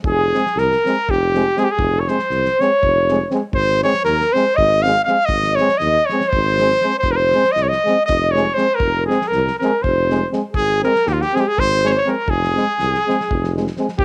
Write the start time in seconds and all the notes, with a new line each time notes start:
0.04 F1 G#4, kick
0.33 G#3 C4, snare
0.46 snare
0.56 C2 A#4, snare
0.72 snare
0.85 G#3 C4, snare
1.09 F1 G4, kick
1.35 G#3 C4, snare
1.56 G#3 C4 G#4, snare
1.61 G4
1.69 G#4
1.78 F1, kick
1.99 C#5
2.08 G#3 C4 C5, snare
2.19 snare
2.30 C2, snare
2.45 snare
2.60 G#3 C4 C#5, snare
2.83 F1, kick
3.09 G#3 C4, snare
3.31 G#3 C4, snare
3.53 G#1 C5, kick
3.83 G#3 C4 C#5, snare
3.94 snare
4.04 D#2 A#4, snare
4.21 snare
4.33 G#3 C4 C5, snare
4.54 G#1 D#5, kick
4.82 C4 F5, snare
4.86 G#3
5.03 F5
5.07 G#3 C4, snare
5.25 G#1 D#5, kick
5.43 snare
5.53 C#5
5.58 G#3 C4, snare
5.69 snare
5.76 D#5, snare
5.81 D#2
6.06 C#5, snare
6.11 G#3 C4
6.21 snare
6.28 C5
6.33 G#1, kick
6.58 G#3 C4, snare
6.70 snare
6.81 G#3 C4, snare
6.99 C5
7.03 F1, kick
7.11 A#4
7.16 C5
7.32 G#3 C4, snare
7.44 snare
7.52 D#5
7.56 C2, snare
7.63 C#5
7.69 D#5, snare
7.85 G#3 C4, snare
8.06 F1 D#5, kick
8.31 C#5
8.36 G#3 C4, snare
8.54 G#3 C4 C5, snare
8.75 F1 A#4
8.80 kick
9.06 G#3 C4 G#4
9.10 snare
9.21 snare
9.28 A#4
9.32 C2, snare
9.47 snare
9.58 C4 A#4, snare
9.63 G#3
9.82 F1 C5, kick
10.09 G#3 C4, snare
10.31 G#3 C4, snare
10.53 G#1 G#4, kick
10.83 G#3 C4 A#4, snare
10.95 snare
11.06 D#2 G4, snare
11.11 F4
11.21 G4, snare
11.34 G#3 C4 G#4, snare
11.40 G4
11.47 G#4
11.58 G#1 C5, kick
11.83 G#3 C4 C5 C#5, snare
11.89 C5
11.94 C#5
12.06 G#3 C4 A#4, snare
12.27 F1 G#4, kick
12.43 snare
12.55 G#3 C4, snare
12.79 C2, snare
12.95 snare
13.07 G#3 C4, snare
13.21 snare
13.30 F1, kick
13.44 snare
13.56 G#3 C4, snare
13.67 snare
13.77 G#3 C4, snare
13.88 snare
13.98 F1 G#3 C4 G4, kick